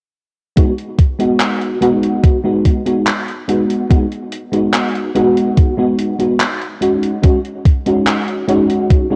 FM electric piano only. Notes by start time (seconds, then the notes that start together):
0.56 G#3 B3 D#4 F#4
1.19 G#3 B3 D#4 F#4
1.81 G#3 B3 D#4 F#4
2.44 G#3 B3 D#4 F#4
2.86 G#3 B3 D#4 F#4
3.48 G#3 B3 D#4 F#4
3.89 G#3 B3 D#4 F#4
4.52 G#3 B3 D#4 F#4
5.14 G#3 B3 D#4 F#4
5.77 G#3 B3 D#4 F#4
6.19 G#3 B3 D#4 F#4
6.81 G#3 C#4 D#4 F#4
7.22 G#3 C#4 D#4 F#4
7.86 G#3 C#4 D#4 F#4
8.48 G#3 C#4 D#4 F#4
9.10 G#3 C#4 D#4 F#4